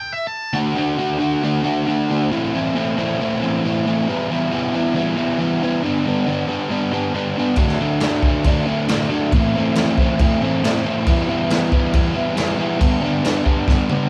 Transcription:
0.00 G5
0.12 E5
0.27 A5
0.53 D3 A3 D4 F#4
0.76 D3 A3 D4 F#4
0.98 D3 A3 D4 F#4
1.19 D3 A3 D4 F#4
1.43 D3 A3 D4 F#4
1.62 D3 A3 D4 F#4
1.86 D3 A3 D4 F#4
2.09 D3 A3 D4 F#4
2.30 A2 E3 A3 C4 E4
2.53 A2 E3 A3 C4 E4
2.74 A2 E3 A3 C4 E4
2.97 A2 E3 A3 C4 E4
3.20 A2 E3 A3 C4 E4
3.41 A2 E3 A3 C4 E4
3.65 A2 E3 A3 C4 E4
3.86 A2 E3 A3 C4 E4
4.08 E3 G3 B3 E4
4.30 E3 G3 B3 E4
4.52 E3 G3 B3 E4
4.73 E3 G3 B3 E4
4.94 E3 G3 B3 E4
5.16 E3 G3 B3 E4
5.39 E3 G3 B3 E4
5.63 E3 G3 B3 E4
5.83 G2 D3 G3 B3 D4
6.05 G2 D3 G3 B3 D4
6.27 G2 D3 G3 B3 D4
6.46 G2 D3 G3 B3 D4
6.69 G2 D3 G3 B3 D4
6.91 G2 D3 G3 B3 D4
7.13 G2 D3 G3 B3 D4
7.37 G2 D3 G3 B3 D4
7.56 D3 F#3 A3 D4, kick, crash
7.68 snare
7.80 D3 F#3 A3 D4
8.00 D3 F#3 A3 D4, snare, crash
8.23 D3 F#3 A3 D4, kick
8.44 D3 F#3 A3 D4, kick, crash
8.66 D3 F#3 A3 D4
8.89 D3 F#3 A3 D4, snare, crash
9.09 D3 F#3 A3 D4
9.32 A2 E3 A3 C4 E4, kick, crash
9.56 A2 E3 A3 C4 E4
9.75 A2 E3 A3 C4 E4, snare, crash
9.98 A2 E3 A3 C4 E4, kick
10.19 A2 E3 A3 C4 E4, kick, crash
10.40 A2 E3 A3 C4 E4
10.63 A2 E3 A3 C4 E4, snare, crash
10.85 A2 E3 A3 C4 E4
11.07 E3 G3 B3 E4, kick, crash
11.28 E3 G3 B3 E4
11.50 E3 G3 B3 E4, snare, crash
11.72 E3 G3 B3 E4, kick
11.93 E3 G3 B3 E4, kick, crash
12.15 E3 G3 B3 E4
12.35 E3 G3 B3 E4, snare, crash
12.58 E3 G3 B3 E4
12.79 G2 D3 G3 B3 D4, kick, crash
13.01 G2 D3 G3 B3 D4
13.22 G2 D3 G3 B3 D4, snare, crash
13.45 G2 D3 G3 B3 D4, kick
13.67 G2 D3 G3 B3 D4, kick, snare
13.89 G2 D3 G3 B3 D4, high tom

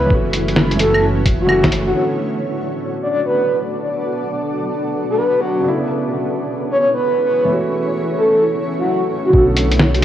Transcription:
Already playing: C#3 B3 C#4 E4 B4
0.06 E3 F#4 C#5
0.10 F#1 A3, kick
0.14 F#4
0.33 closed hi-hat
0.48 closed hi-hat
0.56 snare
0.71 closed hi-hat
0.76 E3, closed hi-hat
0.80 A3 A4
0.84 F#4
0.95 claves
1.26 kick, closed hi-hat
1.41 F#4
1.47 E3 A3 F#4, claves
1.64 kick, snare, closed hi-hat
1.72 closed hi-hat
1.87 F#4
1.91 D3 B3 D4 F#4 A4
1.95 B3 A4 D5
3.02 D5
3.10 D5
3.26 B4
5.10 A4
5.18 B4
5.41 F#4
5.60 C#3 C#4 E4 G#4 C#5
5.64 B3
5.68 E4
6.71 C#5
6.79 C#5
6.94 B4
7.26 B4
7.45 E3 A3 F#4
7.53 F#4
8.18 A4
8.79 F#4
9.25 F#4
9.29 D3 F#4, kick
9.33 B1 A3 B3 D4 F#4 B4
9.37 A4
9.56 closed hi-hat
9.72 closed hi-hat
9.79 snare
9.95 closed hi-hat
9.99 D3

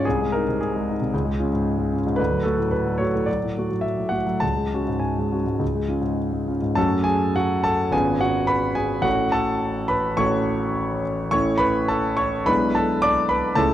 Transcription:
0.05 C2 G#4
0.21 G#3
0.32 D#4 A#4
0.48 C3
0.61 G#4
0.76 G#3
0.89 D#4
1.01 C3
1.14 C#2
1.25 G#3
1.39 C#4 F4
1.53 G#2
1.78 G#3
1.92 C#4 F4
2.07 G#2
2.16 D2 B4
2.31 F#3
2.43 A3 F#4 A4
2.58 A2
2.71 B4
2.86 F#3
2.98 A3 F#4 C#5
3.14 A2
3.26 F#3 D5
3.43 A2
3.58 A3 F#4
3.70 F#3
3.81 E5
3.97 A2
4.09 A3 F#4 F#5
4.26 F#3
4.40 C#2 A5
4.56 G#3
4.74 C#4 F#4
4.88 G#2
4.99 G#5
5.19 G#3
5.32 C#4 F#4
5.46 G#2
5.59 C#2
5.75 G#3
5.89 C#4 F4
6.02 G#2
6.33 G#3
6.47 C#4 F4
6.62 G#2
6.75 F#2 A3 C#4 F#4 A4 A5
7.04 G#4 G#5
7.36 F#4 F#5
7.64 A4 A5
7.91 G#1 B3 C#4 F4 G#4 G#5
8.21 F#4 F#5
8.47 B4 B5
8.75 G#4 G#5
9.02 A1 A3 C#4 F#4 F#5
9.32 A4 A5
9.88 B4 B5
10.17 A1 A3 C#4 F#4 C#5 C#6
11.31 A1 A3 C#4 E4 C#5 C#6
11.58 B4 B5
11.88 A4 A5
12.17 C#5 C#6
12.45 B1 G#3 D4 E4 B4 B5
12.75 A4 A5
13.02 D5 D6
13.29 B4 B5
13.55 C#2 A3 C#4 E4 A4 A5

